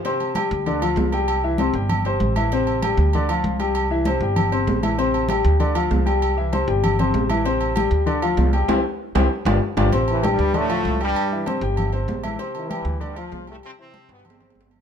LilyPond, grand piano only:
\new Staff \with { instrumentName = "Grand piano" } { \time 4/4 \key d \dorian \tempo 4 = 194 <c c' c''>4 <g g' g''>4 <d d' d''>8 <f f' f''>4 <g g' g''>8~ | <g g' g''>8 <e e' e''>8 <c c' c''>8 <g g' g''>4 <c c' c''>4 <e e' e''>8 | <c c' c''>4 <g g' g''>4 <d d' d''>8 <f f' f''>4 <g g' g''>8~ | <g g' g''>8 <e e' e''>8 <c c' c''>8 <g g' g''>4 <c c' c''>4 <e e' e''>8 |
<c c' c''>4 <g g' g''>4 <d d' d''>8 <f f' f''>4 <g g' g''>8~ | <g g' g''>8 <e e' e''>8 <c c' c''>8 <g g' g''>4 <c c' c''>4 <e e' e''>8 | <c c' c''>4 <g g' g''>4 <d d' d''>8 <f f' f''>4 <g g' g''>8 | <c' e' g'>8 r4 <c' e' g'>8 r8 <d' f' g'>8 r8 <d' f' g'>8 |
<c c' c''>4 <g g' g''>4 <d d' d''>8 <f f' f''>4 <g g' g''>8~ | <g g' g''>8 <e e' e''>8 <c c' c''>8 <g g' g''>4 <c c' c''>4 <e e' e''>8 | <c c' c''>4 <g g' g''>4 <d d' d''>8 <f f' f''>4 <g g' g''>8~ | <g g' g''>8 <e e' e''>8 <c c' c''>8 <g g' g''>4 <c c' c''>4 <f f' f''>8 | }